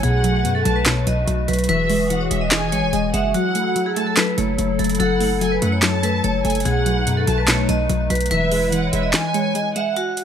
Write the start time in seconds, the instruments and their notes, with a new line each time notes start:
0.03 808-style bass B1, synth pluck B2, analog synth pad A3 F#4 B4, vibraphone G#4, violin section F#5, closed hi-hat
0.24 synth pluck F#3, closed hi-hat
0.45 808-style bass F#2, synth pluck B2, closed hi-hat
0.55 vibraphone A4
0.65 808-style bass B1, synth pluck F#3, violin section A5, closed hi-hat
0.76 vibraphone B4
0.86 synth pluck B2, vibraphone C#5, snare, clap, closed hi-hat
1.07 808-style bass B1, synth pluck F#3, vibraphone D#5, closed hi-hat
1.27 808-style bass B1, synth pluck F#3, closed hi-hat
1.48 808-style bass B1, synth pluck F#3, vibraphone B4, closed hi-hat
1.53 closed hi-hat
1.59 closed hi-hat
1.64 closed hi-hat
1.69 808-style bass E1, analog synth pad E3 G#4, synth pluck E3, vibraphone B4, violin section E5, closed hi-hat
1.90 synth pluck G#3, open hi-hat
2.10 synth pluck E3, violin section F#5, closed hi-hat
2.21 vibraphone C#5
2.31 808-style bass E1, synth pluck G#3, violin section E5, closed hi-hat
2.41 vibraphone D#5
2.51 synth pluck E3, violin section G#5, snare, clap, closed hi-hat
2.72 808-style bass G#1, synth pluck G#3, vibraphone C#5, closed hi-hat
2.83 808-style bass E1
2.93 808-style bass E1, synth pluck G#3, vibraphone D#5, closed hi-hat
3.13 808-style bass F#1, synth pluck G#3, vibraphone E5, violin section F#5, closed hi-hat
3.34 synth pluck F#3, analog synth pad F#3 E4 A4, vibraphone F#4, violin section F#5, closed hi-hat
3.55 synth pluck A3, closed hi-hat
3.76 synth pluck F#3, closed hi-hat
3.86 vibraphone G#4
3.96 synth pluck A3, violin section A5, closed hi-hat
4.07 vibraphone A4
4.17 synth pluck F#3, vibraphone B4, snare, clap, closed hi-hat
4.38 808-style bass F#1, synth pluck A3, vibraphone C#5, closed hi-hat
4.58 808-style bass F#1, synth pluck A3, closed hi-hat
4.79 808-style bass F#1, synth pluck A3, vibraphone A4, closed hi-hat
4.84 closed hi-hat
4.89 closed hi-hat
4.95 closed hi-hat
5.00 808-style bass F#1, synth pluck F#3, vibraphone A4, violin section F#5, closed hi-hat
5.21 synth pluck A3, open hi-hat
5.41 synth pluck F#3, violin section G#5, closed hi-hat
5.52 vibraphone B4
5.62 808-style bass F#2, synth pluck A3, violin section F#5, closed hi-hat
5.72 vibraphone C#5
5.82 synth pluck F#3, violin section A5, snare, clap, closed hi-hat
6.03 synth pluck A3, vibraphone B4, closed hi-hat
6.24 808-style bass F#1, synth pluck A3, vibraphone C#5, closed hi-hat
6.44 808-style bass F#1, synth pluck A3, violin section G#5, closed hi-hat
6.50 closed hi-hat
6.55 closed hi-hat
6.60 closed hi-hat
6.65 808-style bass B1, synth pluck B2, analog synth pad A3 D#4 B4, vibraphone G#4, violin section F#5, closed hi-hat
6.86 synth pluck F#3, closed hi-hat
7.07 808-style bass F#2, synth pluck B2, closed hi-hat
7.17 vibraphone A4
7.27 808-style bass B1, synth pluck F#3, violin section A5, closed hi-hat
7.38 vibraphone B4
7.48 synth pluck B2, vibraphone C#5, snare, clap, closed hi-hat
7.69 808-style bass B1, synth pluck F#3, vibraphone D#5, closed hi-hat
7.89 808-style bass B1, synth pluck F#3, closed hi-hat
8.10 808-style bass B1, synth pluck F#3, vibraphone B4, closed hi-hat
8.15 closed hi-hat
8.21 closed hi-hat
8.26 closed hi-hat
8.31 808-style bass E1, synth pluck E3, analog synth pad G#3 E4 B4, vibraphone B4, violin section E5, closed hi-hat
8.52 synth pluck G#3, open hi-hat
8.72 synth pluck E3, violin section F#5, closed hi-hat
8.83 vibraphone C#5
8.93 808-style bass E1, synth pluck G#3, violin section E5, closed hi-hat
9.03 vibraphone D#5
9.13 synth pluck E3, violin section G#5, snare, clap, closed hi-hat
9.34 synth pluck G#3, vibraphone C#5, closed hi-hat
9.55 synth pluck G#3, vibraphone D#5, closed hi-hat
9.75 synth pluck G#3, vibraphone E5, violin section F#5, closed hi-hat
9.96 vibraphone F#4, closed hi-hat
10.17 closed hi-hat